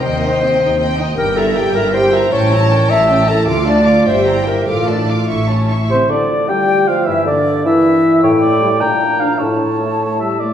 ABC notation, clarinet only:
X:1
M:6/8
L:1/8
Q:3/8=103
K:Cdor
V:1 name="Clarinet"
c4- c z | [K:Dm] B A2 B c2 | ^c3 e2 A | F d2 c2 B |
A3 z3 | C D2 G2 F | E D2 E3 | E3 D3 |
E4- E z |]